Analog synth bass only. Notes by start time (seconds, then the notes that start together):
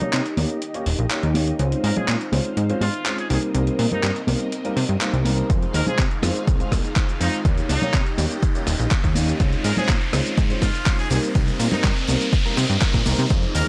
0.01 C3
0.13 C3
0.38 D#2
0.86 D#1
0.99 A#1
1.23 D#2
1.59 C#2
1.84 G#2
1.96 A#2
2.08 A#2
2.33 C#2
2.57 G#2
2.81 G#2
3.30 C2
3.54 C2
3.79 A#2
3.91 G2
4.03 G2
4.28 C2
4.77 C3
4.89 G2
5.13 C2
5.50 F2
5.74 D#2
5.87 C3
5.99 C3
6.23 F2
6.47 C2
6.72 C2
7.21 F2
7.45 D#2
7.69 C#2
7.82 C3
7.94 C3
8.18 D#2
8.67 D#1
8.80 A#1
9.04 D#2
9.40 C#2
9.65 G#2
9.77 A#2
9.89 A#2
10.13 C#2
10.38 G#2
10.62 G#2
11.11 C2
11.35 C2
11.60 A#2
11.72 G2
11.84 G2
12.08 C2
12.57 C3
12.70 G2
12.94 A#2
13.06 C2
13.19 C3
13.30 F2
13.55 D#2